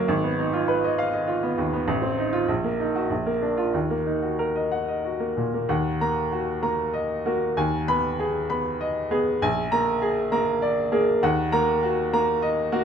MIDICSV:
0, 0, Header, 1, 2, 480
1, 0, Start_track
1, 0, Key_signature, -6, "minor"
1, 0, Tempo, 603015
1, 64, Time_signature, 3, 2, 24, 8
1, 2465, Tempo, 648649
1, 4385, Tempo, 625652
1, 5825, Tempo, 612245
1, 7745, Tempo, 600000
1, 10003, End_track
2, 0, Start_track
2, 0, Title_t, "Grand piano"
2, 0, Program_c, 0, 0
2, 0, Control_c, 0, 64, 127
2, 0, Note_on_c, 0, 42, 70
2, 0, Note_on_c, 0, 54, 59
2, 0, Note_on_c, 0, 58, 60
2, 0, Note_on_c, 0, 66, 60
2, 0, Note_on_c, 0, 70, 63
2, 0, Note_on_c, 0, 75, 58
2, 0, Note_on_c, 0, 78, 81
2, 66, Note_on_c, 0, 32, 76
2, 79, Control_c, 0, 64, 0
2, 80, Note_off_c, 0, 54, 0
2, 80, Note_off_c, 0, 75, 0
2, 80, Note_off_c, 0, 78, 0
2, 81, Note_off_c, 0, 58, 0
2, 81, Note_off_c, 0, 70, 0
2, 86, Note_off_c, 0, 42, 0
2, 87, Note_off_c, 0, 66, 0
2, 190, Note_on_c, 0, 59, 49
2, 216, Control_c, 0, 64, 127
2, 306, Note_on_c, 0, 63, 50
2, 375, Note_off_c, 0, 59, 0
2, 424, Note_on_c, 0, 65, 57
2, 493, Note_off_c, 0, 63, 0
2, 541, Note_on_c, 0, 71, 60
2, 611, Note_off_c, 0, 65, 0
2, 667, Note_on_c, 0, 75, 53
2, 729, Note_off_c, 0, 71, 0
2, 784, Note_on_c, 0, 77, 71
2, 853, Note_off_c, 0, 75, 0
2, 900, Note_on_c, 0, 75, 51
2, 971, Note_off_c, 0, 77, 0
2, 1014, Note_on_c, 0, 65, 53
2, 1088, Note_off_c, 0, 75, 0
2, 1140, Note_on_c, 0, 59, 51
2, 1204, Note_off_c, 0, 65, 0
2, 1257, Note_on_c, 0, 39, 55
2, 1326, Note_off_c, 0, 59, 0
2, 1380, Note_on_c, 0, 59, 53
2, 1445, Note_off_c, 0, 39, 0
2, 1459, Note_off_c, 0, 32, 0
2, 1494, Note_on_c, 0, 33, 66
2, 1495, Note_off_c, 0, 59, 0
2, 1502, Control_c, 0, 64, 0
2, 1607, Note_on_c, 0, 60, 48
2, 1629, Control_c, 0, 64, 127
2, 1732, Note_on_c, 0, 63, 46
2, 1803, Note_off_c, 0, 60, 0
2, 1853, Note_on_c, 0, 65, 62
2, 1926, Note_off_c, 0, 63, 0
2, 1962, Note_off_c, 0, 33, 0
2, 1974, Note_off_c, 0, 65, 0
2, 1975, Note_on_c, 0, 34, 62
2, 1989, Control_c, 0, 64, 0
2, 2101, Note_on_c, 0, 58, 47
2, 2114, Control_c, 0, 64, 127
2, 2226, Note_on_c, 0, 63, 45
2, 2294, Note_off_c, 0, 58, 0
2, 2350, Note_on_c, 0, 66, 55
2, 2420, Note_off_c, 0, 63, 0
2, 2452, Note_off_c, 0, 34, 0
2, 2470, Note_off_c, 0, 66, 0
2, 2470, Note_on_c, 0, 34, 56
2, 2481, Control_c, 0, 64, 0
2, 2587, Note_on_c, 0, 58, 47
2, 2601, Control_c, 0, 64, 127
2, 2704, Note_on_c, 0, 62, 43
2, 2776, Note_off_c, 0, 58, 0
2, 2817, Note_on_c, 0, 65, 54
2, 2896, Note_off_c, 0, 62, 0
2, 2932, Note_off_c, 0, 34, 0
2, 2940, Note_on_c, 0, 39, 51
2, 2942, Note_off_c, 0, 65, 0
2, 2957, Control_c, 0, 64, 0
2, 3060, Note_on_c, 0, 58, 40
2, 3086, Control_c, 0, 64, 127
2, 3177, Note_on_c, 0, 63, 41
2, 3257, Note_off_c, 0, 58, 0
2, 3300, Note_on_c, 0, 66, 41
2, 3375, Note_off_c, 0, 63, 0
2, 3421, Note_on_c, 0, 70, 48
2, 3496, Note_off_c, 0, 66, 0
2, 3544, Note_on_c, 0, 75, 45
2, 3617, Note_off_c, 0, 70, 0
2, 3663, Note_on_c, 0, 78, 53
2, 3738, Note_off_c, 0, 75, 0
2, 3787, Note_on_c, 0, 75, 40
2, 3857, Note_off_c, 0, 78, 0
2, 3906, Note_on_c, 0, 66, 44
2, 3979, Note_off_c, 0, 75, 0
2, 4020, Note_on_c, 0, 58, 38
2, 4099, Note_off_c, 0, 66, 0
2, 4146, Note_on_c, 0, 46, 42
2, 4216, Note_off_c, 0, 58, 0
2, 4272, Note_on_c, 0, 58, 39
2, 4338, Note_off_c, 0, 46, 0
2, 4353, Note_off_c, 0, 39, 0
2, 4383, Note_on_c, 0, 39, 66
2, 4385, Note_on_c, 0, 78, 57
2, 4387, Note_off_c, 0, 58, 0
2, 4398, Control_c, 0, 64, 0
2, 4516, Control_c, 0, 64, 127
2, 4629, Note_on_c, 0, 58, 46
2, 4631, Note_on_c, 0, 82, 64
2, 4769, Note_off_c, 0, 78, 0
2, 4818, Note_off_c, 0, 58, 0
2, 4866, Note_on_c, 0, 66, 54
2, 5008, Note_off_c, 0, 82, 0
2, 5102, Note_on_c, 0, 58, 46
2, 5102, Note_on_c, 0, 82, 55
2, 5246, Note_off_c, 0, 66, 0
2, 5294, Note_off_c, 0, 58, 0
2, 5339, Note_on_c, 0, 75, 57
2, 5488, Note_off_c, 0, 82, 0
2, 5584, Note_on_c, 0, 66, 57
2, 5588, Note_on_c, 0, 58, 48
2, 5728, Note_off_c, 0, 75, 0
2, 5779, Note_off_c, 0, 58, 0
2, 5793, Note_off_c, 0, 39, 0
2, 5825, Note_off_c, 0, 66, 0
2, 5827, Note_on_c, 0, 39, 63
2, 5827, Note_on_c, 0, 80, 60
2, 5839, Control_c, 0, 64, 0
2, 5956, Control_c, 0, 64, 127
2, 6070, Note_on_c, 0, 59, 50
2, 6071, Note_on_c, 0, 83, 72
2, 6212, Note_off_c, 0, 80, 0
2, 6261, Note_off_c, 0, 59, 0
2, 6316, Note_on_c, 0, 68, 54
2, 6452, Note_off_c, 0, 83, 0
2, 6553, Note_on_c, 0, 83, 56
2, 6554, Note_on_c, 0, 59, 49
2, 6695, Note_off_c, 0, 68, 0
2, 6742, Note_off_c, 0, 59, 0
2, 6795, Note_on_c, 0, 75, 59
2, 6935, Note_off_c, 0, 83, 0
2, 7033, Note_on_c, 0, 59, 58
2, 7034, Note_on_c, 0, 68, 61
2, 7178, Note_off_c, 0, 75, 0
2, 7224, Note_off_c, 0, 59, 0
2, 7240, Note_off_c, 0, 39, 0
2, 7273, Note_off_c, 0, 68, 0
2, 7277, Note_on_c, 0, 34, 71
2, 7279, Note_on_c, 0, 80, 71
2, 7283, Control_c, 0, 64, 0
2, 7434, Control_c, 0, 64, 127
2, 7510, Note_on_c, 0, 82, 77
2, 7515, Note_on_c, 0, 58, 50
2, 7656, Note_off_c, 0, 80, 0
2, 7702, Note_off_c, 0, 58, 0
2, 7747, Note_on_c, 0, 68, 62
2, 7890, Note_off_c, 0, 82, 0
2, 7986, Note_on_c, 0, 58, 62
2, 7986, Note_on_c, 0, 82, 63
2, 8130, Note_off_c, 0, 68, 0
2, 8178, Note_off_c, 0, 58, 0
2, 8229, Note_on_c, 0, 74, 62
2, 8371, Note_off_c, 0, 82, 0
2, 8467, Note_on_c, 0, 68, 64
2, 8470, Note_on_c, 0, 58, 63
2, 8614, Note_off_c, 0, 74, 0
2, 8662, Note_off_c, 0, 58, 0
2, 8680, Note_off_c, 0, 34, 0
2, 8709, Note_off_c, 0, 68, 0
2, 8714, Note_on_c, 0, 39, 73
2, 8714, Note_on_c, 0, 78, 75
2, 8723, Control_c, 0, 64, 0
2, 8838, Control_c, 0, 64, 127
2, 8950, Note_on_c, 0, 82, 78
2, 8953, Note_on_c, 0, 58, 62
2, 9096, Note_off_c, 0, 78, 0
2, 9143, Note_off_c, 0, 58, 0
2, 9193, Note_on_c, 0, 66, 66
2, 9333, Note_off_c, 0, 82, 0
2, 9436, Note_on_c, 0, 58, 63
2, 9439, Note_on_c, 0, 82, 71
2, 9574, Note_off_c, 0, 66, 0
2, 9624, Note_off_c, 0, 58, 0
2, 9669, Note_on_c, 0, 75, 63
2, 9816, Note_off_c, 0, 82, 0
2, 9908, Note_on_c, 0, 58, 63
2, 9911, Note_on_c, 0, 66, 75
2, 10003, Note_off_c, 0, 39, 0
2, 10003, Note_off_c, 0, 58, 0
2, 10003, Note_off_c, 0, 66, 0
2, 10003, Note_off_c, 0, 75, 0
2, 10003, End_track
0, 0, End_of_file